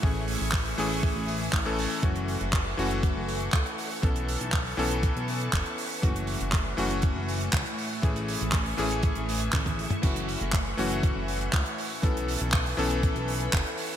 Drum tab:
CC |----------------|----------------|----------------|----------------|
HH |--o--oo---o---o-|xxoxx-oxx-oxxxo-|xxoxxooxxxoxxxo-|xxoxx-oxx-oxxxo-|
CP |----x-------x---|----x-------x---|----x-------x---|----x-------x---|
T1 |----------------|----------------|----------------|----------------|
T2 |----------------|----------------|----------------|----------------|
BD |o---o---o---o---|o---o---o---o---|o---o---o---o---|o---o---o---o---|

CC |----------------|x---------------|----------------|
HH |xxoxxooxxxoxxxox|xxoxx-oxx-oxxxo-|xxoxxooxxxoxxxo-|
CP |----x-------x---|----x-------x---|----x-------x---|
T1 |------------oo--|----------------|----------------|
T2 |---------------o|----------------|----------------|
BD |o---o---o---oo--|o---o---o---o---|o---o---o---o---|